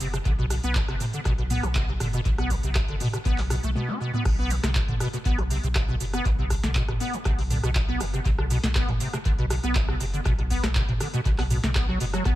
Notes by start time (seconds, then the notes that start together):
0.00 F#1 C3, open hi-hat, shaker
0.14 C3, cross-stick, closed hi-hat, shaker
0.25 B1 D3, kick, closed hi-hat, shaker
0.39 B2
0.50 B2, cross-stick, open hi-hat, shaker
0.63 B1 B3, closed hi-hat, shaker
0.75 B2, kick, clap, closed hi-hat, shaker
0.88 F#1 C3, cross-stick, closed hi-hat
1.00 C3, mid tom, open hi-hat, shaker
1.13 D3, closed hi-hat, shaker
1.25 B1 B2, kick, cross-stick, closed hi-hat, shaker
1.38 B2, closed hi-hat
1.50 B3, mid tom, open hi-hat, shaker
1.63 B1 B2, cross-stick, closed hi-hat, shaker
1.75 C3, kick, clap, closed hi-hat, shaker
1.88 C3
2.00 F#1 D3, cross-stick, mid tom, open hi-hat, shaker
2.13 B2, closed hi-hat, shaker
2.25 B1 B2, kick, closed hi-hat, shaker
2.38 B3, cross-stick, closed hi-hat
2.50 B2, kick, open hi-hat, shaker
2.63 B1 C3, closed hi-hat, shaker
2.75 C3, kick, cross-stick, clap, closed hi-hat, shaker
2.88 F#1 D3, closed hi-hat
3.00 B2, mid tom, open hi-hat, shaker
3.13 B2, cross-stick, closed hi-hat, shaker
3.25 B1 B3, kick, closed hi-hat, shaker
3.38 B2, clap, open hi-hat
3.50 B2, cross-stick, open hi-hat, shaker
3.63 B1 A3, closed hi-hat, shaker
3.75 B2, high tom
3.88 D4, high tom
4.00 B2
4.13 B3, mid tom
4.25 B1 B2, kick, cross-stick, closed hi-hat, crash, shaker
4.39 B3
4.50 B2, open hi-hat, shaker
4.63 B1 C3, cross-stick, snare, closed hi-hat, shaker
4.75 C3, kick, clap, closed hi-hat, shaker
4.88 F#1 D3, closed hi-hat, mid tom
5.00 B2, cross-stick, open hi-hat, shaker
5.13 B2, closed hi-hat, shaker
5.25 B1 B3, kick, closed hi-hat, shaker
5.38 B2, cross-stick, closed hi-hat
5.50 C3, open hi-hat, shaker
5.63 B1 C3, closed hi-hat, shaker
5.75 D3, kick, cross-stick, clap, closed hi-hat, shaker
5.88 B2
6.00 F#1 B2, open hi-hat, shaker
6.13 B3, cross-stick, closed hi-hat, shaker
6.25 B1 B2, kick, closed hi-hat, shaker
6.38 C3
6.50 C3, kick, cross-stick, open hi-hat, shaker
6.63 B1 D3, snare, closed hi-hat, shaker
6.75 B2, kick, clap, closed hi-hat, shaker
6.88 F#1 B2, cross-stick, closed hi-hat, mid tom
7.00 B3, open hi-hat, shaker
7.13 B2, closed hi-hat, shaker
7.25 B1 C3, kick, cross-stick, closed hi-hat, shaker
7.39 C3, open hi-hat
7.50 D3, mid tom, open hi-hat, shaker
7.63 B1 B2, cross-stick, closed hi-hat, shaker
7.75 B2, kick, clap, closed hi-hat, shaker
7.88 B3
8.00 F#1 B2, cross-stick, open hi-hat, shaker
8.13 C3, closed hi-hat, shaker
8.25 B1 C3, kick, closed hi-hat, shaker
8.38 D3, cross-stick
8.50 B2, open hi-hat, shaker
8.64 B1 B2, snare, closed hi-hat, shaker
8.75 B3, kick, cross-stick, clap, closed hi-hat, shaker
8.89 F#1 B2, closed hi-hat, mid tom
9.00 C3, open hi-hat, shaker
9.13 C3, cross-stick, closed hi-hat, shaker
9.25 B1 D3, kick, closed hi-hat, shaker
9.39 B2, closed hi-hat
9.50 B2, cross-stick, open hi-hat, shaker
9.63 B1 B3, closed hi-hat, shaker
9.75 B2, kick, clap, closed hi-hat, shaker
9.88 C3, cross-stick
10.00 F#1 C3, open hi-hat, shaker
10.13 D3, closed hi-hat, shaker
10.25 B1 B2, kick, cross-stick, closed hi-hat, shaker
10.38 B2, closed hi-hat
10.50 B3, kick, open hi-hat, shaker
10.63 B1 B2, cross-stick, snare, closed hi-hat, shaker
10.75 C3, kick, clap, closed hi-hat, shaker
10.88 F#1 C3, closed hi-hat, mid tom
11.00 D3, cross-stick, open hi-hat, shaker
11.14 B2, closed hi-hat, shaker
11.25 B1 B2, kick, closed hi-hat, shaker
11.38 B3, cross-stick, clap, open hi-hat
11.50 B2, mid tom, open hi-hat, shaker
11.64 B1 C3, snare, closed hi-hat, shaker
11.75 B3, kick, cross-stick, clap, closed hi-hat, shaker
11.89 F#3
12.00 F#1 B2, open hi-hat, shaker
12.13 F#3, cross-stick, closed hi-hat, shaker
12.25 B1 B3, kick, cross-stick, closed hi-hat, shaker